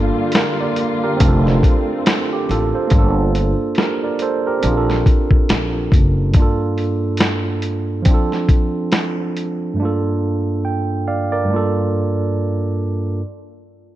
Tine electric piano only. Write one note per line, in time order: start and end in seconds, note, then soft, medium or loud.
0.00 1.14 A#3 medium
0.00 1.16 D4 medium
0.00 1.18 F4 medium
0.00 0.36 A4 medium
0.36 0.58 G4 soft
0.36 0.58 A#4 medium
0.60 1.01 A#4 soft
0.60 1.00 D5 medium
1.03 1.43 G4 medium
1.03 1.43 A#4 medium
1.17 2.86 C4 medium
1.17 2.88 D4 medium
1.24 1.64 F4 medium
1.28 1.66 A4 medium
2.33 2.49 G4 medium
2.51 2.73 F4 medium
2.51 2.73 A4 medium
2.75 2.97 A4 medium
2.75 3.15 C5 medium
2.87 4.57 A#3 medium
2.87 4.59 D4 medium
2.95 4.61 F4 medium
2.95 3.79 A4 medium
3.79 4.01 G4 soft
3.79 4.01 A#4 medium
4.03 4.20 A#4 medium
4.03 4.20 D5 medium
4.22 4.44 A4 medium
4.22 4.44 C5 medium
4.47 4.87 G4 medium
4.47 4.86 A#4 medium
4.60 6.29 C4 medium
4.60 6.31 D4 medium
4.67 6.33 F4 medium
4.71 4.74 G#4 medium
4.77 6.38 A4 medium
6.31 8.01 G2 medium
6.31 8.02 A#3 medium
6.36 8.03 D4 medium
6.36 8.05 F4 medium
6.42 8.06 A4 medium
8.02 9.72 F3 medium
8.02 9.73 C4 medium
8.08 9.75 D4 medium
8.08 9.76 F4 medium
8.14 9.78 A4 medium
9.74 11.43 G2 medium
9.74 9.84 A3 medium
9.80 11.48 A#3 medium
9.80 11.46 D4 medium
9.80 11.48 F4 medium
9.85 10.65 A4 medium
10.65 11.05 G5 medium
11.07 11.30 D5 medium
11.07 11.30 F5 medium
11.32 11.72 A#4 medium
11.32 11.72 D5 medium
11.45 13.15 G2 medium
11.45 11.55 A3 medium
11.50 13.19 A#3 medium
11.50 13.18 D4 medium
11.50 13.19 F4 medium
11.56 13.20 A4 medium